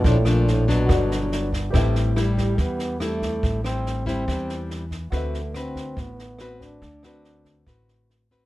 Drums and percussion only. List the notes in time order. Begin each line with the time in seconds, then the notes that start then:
0.04 kick, snare
0.25 cross-stick, snare
0.47 snare
0.68 kick, snare
0.89 kick, cross-stick, snare
1.11 snare
1.32 snare
1.53 kick, snare
1.74 kick, cross-stick, snare
1.95 snare
2.17 cross-stick, snare
2.37 kick, snare
2.57 kick, snare
2.79 snare
3.00 cross-stick, snare
3.22 kick, snare
3.43 kick, snare
3.64 cross-stick, snare
3.86 snare
4.07 kick, snare
4.28 kick, cross-stick, snare
4.49 snare
4.70 snare
4.91 kick, snare
5.12 kick, cross-stick, snare
5.34 snare
5.54 cross-stick, snare
5.76 kick, snare
5.97 kick, snare
6.19 snare
6.39 cross-stick, snare
6.60 kick, snare
6.82 kick, snare
7.03 cross-stick, snare
7.24 snare
7.45 kick, snare
7.67 kick, cross-stick, snare
7.88 snare
8.10 snare
8.30 kick, snare